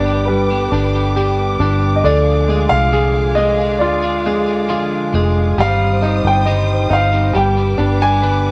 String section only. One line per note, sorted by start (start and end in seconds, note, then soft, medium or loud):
0.00 2.01 B4 medium
0.00 2.01 G5 medium
0.00 5.54 D6 medium
2.04 5.54 G#4 medium
2.04 5.55 F5 medium
5.60 7.34 C5 medium
5.60 7.34 D#6 medium
7.36 8.51 B4 medium
7.36 8.51 D6 medium